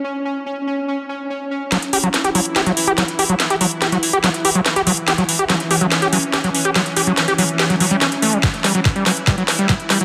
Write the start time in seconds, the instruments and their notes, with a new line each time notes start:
Already playing: synth texture C#4
1.72 synth texture E3 E4, acid bass F#3, snare, closed hi-hat
1.82 closed hi-hat
1.93 acid bass G4, open hi-hat
2.03 acid bass F#3, closed hi-hat
2.14 snare, closed hi-hat
2.24 acid bass G4, closed hi-hat
2.35 acid bass F#3, open hi-hat
2.45 closed hi-hat
2.56 acid bass G4, snare, closed hi-hat
2.66 acid bass F#3, closed hi-hat
2.77 open hi-hat
2.87 acid bass G4, closed hi-hat
2.98 acid bass F#3, snare, closed hi-hat
3.08 closed hi-hat
3.19 acid bass G4, open hi-hat
3.29 acid bass F#3, closed hi-hat
3.40 snare, closed hi-hat
3.50 acid bass G4, closed hi-hat
3.61 acid bass F#3, open hi-hat
3.71 closed hi-hat
3.82 acid bass G4, snare, closed hi-hat
3.92 acid bass F#3, closed hi-hat
4.03 open hi-hat
4.13 acid bass G4, closed hi-hat
4.24 acid bass F#3, snare, closed hi-hat
4.34 closed hi-hat
4.45 acid bass G4, open hi-hat
4.55 acid bass F#3, closed hi-hat
4.66 snare, closed hi-hat
4.76 acid bass G4, closed hi-hat
4.87 acid bass F#3, open hi-hat
5.08 synth texture C#4, acid bass G4, snare, closed hi-hat
5.18 acid bass F#3, closed hi-hat
5.29 open hi-hat
5.39 acid bass G4
5.50 acid bass F#3, snare, closed hi-hat
5.60 closed hi-hat
5.71 acid bass G4, open hi-hat
5.81 acid bass F#3, closed hi-hat
5.92 snare, closed hi-hat
6.02 acid bass G4, closed hi-hat
6.13 acid bass F#3, open hi-hat
6.23 closed hi-hat
6.34 acid bass G4, snare, closed hi-hat
6.44 acid bass F#3, closed hi-hat
6.55 open hi-hat
6.65 acid bass G4, closed hi-hat
6.76 acid bass F#3, snare, closed hi-hat
6.86 closed hi-hat
6.96 acid bass G4, open hi-hat
7.07 acid bass F#3, closed hi-hat
7.17 snare, closed hi-hat
7.28 acid bass G4, closed hi-hat
7.38 acid bass F#3, open hi-hat
7.49 closed hi-hat
7.59 acid bass G4, snare, closed hi-hat
7.70 acid bass F#3, closed hi-hat
7.80 acid bass F#3, open hi-hat
7.91 acid bass G3, closed hi-hat
8.01 acid bass C#4, snare, closed hi-hat
8.12 closed hi-hat
8.22 acid bass A3, open hi-hat
8.33 acid bass G3, closed hi-hat
8.43 acid bass F#3, synth texture E4, kick, snare, closed hi-hat
8.54 closed hi-hat
8.64 acid bass G3, snare, open hi-hat
8.75 acid bass F#3, closed hi-hat
8.85 kick, snare, closed hi-hat
8.96 acid bass G3, closed hi-hat
9.06 acid bass F#3, snare, open hi-hat
9.17 closed hi-hat
9.27 acid bass G3, kick, snare, closed hi-hat
9.38 acid bass F#3, closed hi-hat
9.48 snare, open hi-hat
9.59 acid bass G3, closed hi-hat
9.69 acid bass F#3, kick, snare, closed hi-hat
9.80 closed hi-hat
9.90 acid bass G3, snare, open hi-hat
10.01 acid bass F#3, closed hi-hat